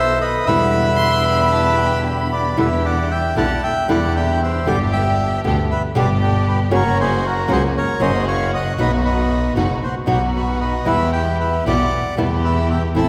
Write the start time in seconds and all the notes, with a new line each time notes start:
Already playing: B1 D#3 B3 A4 C5 E5
0.21 B4 D#5
0.47 E2 B2 D3 G3 B3 D4 E4 G4 B4 E5
0.97 C6
1.25 B5
1.51 A5
1.79 G5
2.04 G4 B5
2.08 B4
2.32 B4 D5
2.57 E2 B2 D3 G3 B3 D4 E4 G4 B4 E5
2.85 D5 F#5
3.11 E5 G5
3.35 B1 B2 D3 G3 B3 D4 E4 G4 F#5 A5
3.63 E5 G5
3.88 E2 B2 D3 G3 B3 D4 E4 G4 D5 F#5
4.16 E5 G5
4.43 C5 E5
4.66 G1 B2 D3 G3 B3 D4 G4 D5 G5
4.92 E5 G5
5.44 D2 B2 D3 G3 B3 D4 G4
5.71 B4 E5
5.95 G1 B2 D3 G3 B3 D4 G4 B4 D5
6.22 D4 G4
6.48 G4 B4
6.71 F#1 C#3 F#3 A#3 C#4 F#4 C#5
6.75 C#4 F#4 A#4
7.01 G#4 C5
7.26 F#4 A#4
7.48 C#2 C#3 F#3 A#3 C#4 F#4 G#4 C5
7.77 A#4 C#5
8.00 F#1 C#3 F#3 A#3 C#4 F#4 C5 D#5
8.27 C#5 F5
8.54 D#5 F#5
8.78 B1 B2 F#3 B3 D#4 F#4 B4 D#5
9.05 B4 D#5
9.55 F#1 B2 F#3 B3 D#4 F#4
9.83 F#4 C5
10.06 B1 B2 F#3 B3 D#4 F#4
10.10 G4 B4
10.36 F#4 B4
10.60 B4 D#5
10.85 E2 B2 E3 G3 B3 E4 G4 B4 E5
11.13 E5 G5
11.40 B4 E5
11.66 B1 B2 E3 G3 B3 E4 G4 D5 F#5
12.17 E2 B2 E3 G3 B3 E4 G4
12.44 B4 E5
12.70 E5 G5
12.95 A1 E3 A3 C4 E4 A4 E5 A5